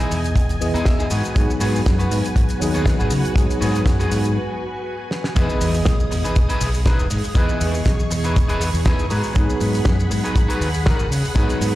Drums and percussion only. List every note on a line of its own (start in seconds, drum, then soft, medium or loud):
0.00 shaker soft
0.11 open hi-hat loud
0.11 shaker medium
0.24 closed hi-hat medium
0.24 shaker medium
0.36 kick loud
0.36 closed hi-hat medium
0.36 shaker medium
0.49 closed hi-hat soft
0.49 shaker soft
0.61 open hi-hat loud
0.61 shaker medium
0.75 closed hi-hat medium
0.75 shaker medium
0.85 kick loud
0.85 snare loud
0.85 closed hi-hat medium
0.85 shaker medium
1.00 shaker soft
1.10 open hi-hat loud
1.10 shaker medium
1.24 closed hi-hat medium
1.24 shaker soft
1.36 kick loud
1.36 closed hi-hat medium
1.36 shaker medium
1.50 shaker soft
1.60 open hi-hat loud
1.60 shaker medium
1.76 shaker medium
1.86 kick loud
1.86 snare loud
1.86 closed hi-hat medium
1.86 shaker medium
1.99 closed hi-hat medium
1.99 shaker soft
2.11 open hi-hat loud
2.11 shaker medium
2.24 closed hi-hat medium
2.24 shaker soft
2.36 kick loud
2.36 closed hi-hat medium
2.36 shaker medium
2.49 closed hi-hat medium
2.49 shaker soft
2.61 open hi-hat loud
2.61 shaker medium
2.75 closed hi-hat medium
2.75 shaker soft
2.86 kick loud
2.86 snare loud
2.86 closed hi-hat medium
2.86 shaker medium
3.00 shaker soft
3.10 open hi-hat loud
3.10 shaker medium
3.25 closed hi-hat soft
3.25 shaker medium
3.36 kick loud
3.36 closed hi-hat loud
3.36 shaker medium
3.50 closed hi-hat medium
3.50 shaker soft
3.62 open hi-hat loud
3.62 shaker medium
3.75 closed hi-hat medium
3.75 shaker soft
3.86 kick loud
3.86 snare loud
3.86 closed hi-hat medium
3.86 shaker medium
4.00 closed hi-hat medium
4.00 shaker soft
4.11 open hi-hat loud
4.11 shaker medium
4.24 closed hi-hat medium
4.24 shaker medium
5.11 snare medium
5.24 snare medium
5.36 kick loud
5.36 closed hi-hat medium
5.36 shaker medium
5.50 shaker soft
5.61 open hi-hat loud
5.61 shaker medium
5.74 shaker medium
5.85 kick loud
5.85 snare loud
5.85 closed hi-hat medium
5.85 shaker medium
6.00 shaker soft
6.11 open hi-hat loud
6.11 shaker medium
6.25 closed hi-hat medium
6.25 shaker medium
6.36 kick loud
6.36 closed hi-hat medium
6.36 shaker medium
6.50 closed hi-hat medium
6.50 shaker soft
6.61 open hi-hat loud
6.61 shaker medium
6.74 shaker medium
6.86 kick loud
6.86 snare loud
6.86 closed hi-hat loud
6.86 shaker medium
6.99 shaker soft
7.10 open hi-hat loud
7.10 shaker medium
7.24 shaker soft
7.35 kick loud
7.35 shaker medium
7.49 shaker soft
7.61 open hi-hat loud
7.61 shaker medium
7.74 shaker medium
7.85 kick loud
7.85 snare loud
7.85 closed hi-hat medium
7.85 shaker medium
7.99 shaker soft
8.10 open hi-hat loud
8.10 shaker medium
8.24 closed hi-hat medium
8.24 shaker medium
8.36 kick loud
8.36 closed hi-hat medium
8.36 shaker medium
8.49 closed hi-hat medium
8.49 shaker soft
8.60 open hi-hat loud
8.60 shaker medium
8.74 shaker medium
8.85 kick loud
8.85 snare loud
8.85 closed hi-hat medium
8.85 shaker medium
8.99 shaker soft
9.10 open hi-hat loud
9.10 shaker medium
9.23 shaker soft
9.35 kick loud
9.35 closed hi-hat medium
9.35 shaker medium
9.50 shaker soft
9.61 open hi-hat loud
9.61 shaker medium
9.75 shaker soft
9.85 kick loud
9.85 snare loud
9.85 closed hi-hat medium
9.85 shaker medium
10.00 shaker soft
10.11 open hi-hat loud
10.11 shaker medium
10.25 closed hi-hat medium
10.25 shaker soft
10.36 kick loud
10.36 closed hi-hat medium
10.36 shaker medium
10.50 closed hi-hat medium
10.50 shaker soft
10.61 open hi-hat loud
10.61 shaker medium
10.74 shaker medium
10.86 kick loud
10.86 snare loud
10.86 closed hi-hat loud
10.86 shaker medium
10.99 shaker soft
11.12 open hi-hat loud
11.12 shaker medium
11.25 shaker medium
11.36 kick loud
11.36 closed hi-hat medium
11.36 shaker medium
11.49 closed hi-hat medium
11.49 shaker soft
11.61 open hi-hat loud
11.61 shaker medium